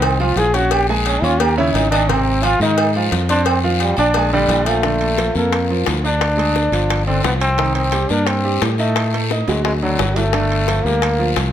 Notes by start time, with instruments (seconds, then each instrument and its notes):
Already playing: fingered electric bass C2, grand piano D#3 D#4 D#5
0.02 trombone C4, cowbell, low agogo, long guiro
0.20 grand piano F3 F4 F5, trombone F4, low agogo
0.36 fingered electric bass A#1, trombone G#4, cowbell, low timbale, short guiro
0.54 grand piano C#4 C#5 C#6, trombone F#4, cowbell, short guiro
0.71 trombone G4, cowbell, low agogo, long guiro
0.89 grand piano G#3 G#4 G#5, trombone A#3
1.06 trombone C#4, cowbell, low agogo, short guiro
1.22 fingered electric bass D#2, grand piano C#4 C#5 C#6, trombone F4, low agogo, short guiro
1.40 grand piano A#3 A#4 A#5, trombone G4, cowbell, low agogo, long guiro
1.57 grand piano C#3 C#4 C#5, trombone E4
1.74 fingered electric bass G#1, trombone D#4, cowbell, low timbale, low agogo, short guiro
1.90 grand piano D#3 D#4 D#5, trombone D4, cowbell, low agogo, short guiro
2.09 grand piano C3 C4 C5, trombone C4, cowbell, low agogo, long guiro
2.43 grand piano F3 F4 F5, trombone F4, cowbell, low agogo, short guiro
2.60 fingered electric bass G#2, grand piano D#3 D#4 D#5, trombone D#4, short guiro
2.78 cowbell, low agogo, long guiro
2.94 grand piano F3 F4 F5, low agogo
3.11 fingered electric bass F2, cowbell, low timbale, short guiro
3.29 grand piano C4 C5 C6, trombone D4, cowbell, short guiro
3.45 trombone C4, cowbell, low agogo, long guiro
3.62 trombone D#3, grand piano F3 F4 F5
3.80 trombone G3, cowbell, low agogo, short guiro
3.97 fingered electric bass A#1, grand piano D4 D5 D6, trombone D4, low agogo, short guiro
4.14 grand piano G#3 G#4 G#5, cowbell, low agogo, long guiro
4.33 grand piano D3 D4 D5, trombone G3
4.48 fingered electric bass A#1, cowbell, low timbale, low agogo, short guiro
4.66 grand piano F3 F4 F5, trombone A3, cowbell, low agogo, short guiro
4.83 grand piano D3 D4, high bongo, high timbale, long guiro
5.01 high timbale
5.18 grand piano F3 F4, high bongo, high timbale, short guiro
5.35 fingered electric bass F2, trombone A#3, grand piano A#3 A4, short guiro
5.53 high bongo, high timbale, long guiro
5.70 grand piano F3 F4
5.87 fingered electric bass D2, high bongo, low bongo, high timbale, low timbale, short guiro
6.04 grand piano D4 D5, trombone D4, short guiro
6.21 high bongo, high timbale, long guiro
6.37 grand piano G#3 G#4, high bongo, high timbale
6.55 grand piano D4 D5, high bongo, short guiro
6.72 fingered electric bass G1, grand piano F3 F4, high bongo, high timbale, short guiro
6.89 high bongo, high timbale, long guiro
7.07 grand piano D3 D4, trombone C4
7.24 fingered electric bass C2, grand piano F3 F4, trombone B3, high bongo, low bongo, high timbale, short guiro
7.40 trombone C4, high bongo, high timbale, short guiro
7.58 grand piano D#3 D#4, high bongo, high timbale, long guiro
7.75 trombone C4, high timbale
7.92 grand piano G3 G4, high bongo, high timbale, short guiro
8.09 fingered electric bass G2, grand piano A#3 A#4, trombone D4, short guiro
8.27 trombone C4, high bongo, high timbale, long guiro
8.44 grand piano G3 G4
8.61 fingered electric bass A2, high bongo, low bongo, high timbale, low timbale, short guiro
8.78 trombone A3, grand piano D#4 D#5, short guiro
8.96 high bongo, high timbale, long guiro
9.13 grand piano A3 A4, high bongo, high timbale
9.30 grand piano D#4 D#5, high bongo, short guiro
9.48 fingered electric bass D2, grand piano F#3 F#4, trombone G#3, high bongo, high timbale, short guiro
9.65 trombone G#3, high bongo, high timbale, long guiro
9.82 grand piano D3 D4, trombone F#3
9.98 fingered electric bass G1, grand piano F#3 F#4, high bongo, low bongo, low timbale, short guiro
10.16 trombone A3, high bongo, low timbale, short guiro
10.33 grand piano D3 D4, high bongo, high timbale, long guiro
10.52 high timbale
10.68 grand piano F3 F4, high bongo, high timbale, short guiro
10.85 fingered electric bass D2, grand piano G3 G4, trombone A#3, short guiro
11.02 high bongo, high timbale, long guiro
11.19 grand piano F3 F4
11.36 fingered electric bass C2, high bongo, low bongo, high timbale, short guiro